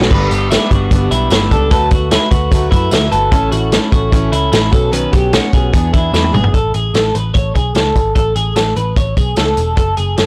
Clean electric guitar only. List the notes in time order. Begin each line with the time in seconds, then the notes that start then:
Already playing: F#4
0.11 B4
0.31 G4
0.51 E4
0.71 F#4
1.11 E4
1.31 E4
1.51 A4
1.71 A4
1.92 F#4
2.11 E4
2.31 F#4
2.71 E4
2.92 E4
3.12 A4
3.32 A4
3.52 F#4
3.72 E4
3.92 F#4
4.32 E4
4.52 E4
4.73 A4
4.93 B4
5.13 G4
5.33 F#4
5.53 G#4
5.93 E4
6.14 E4
6.34 G#4
6.54 A4
6.74 G#4
6.95 A4
7.15 B4
7.34 C#5
7.55 G#4
7.75 A4
8.15 A4
8.36 G#4
8.56 A4
8.77 B4
8.97 C#5
9.17 G#4
9.37 A4
9.77 A4
9.97 G#4
10.18 A4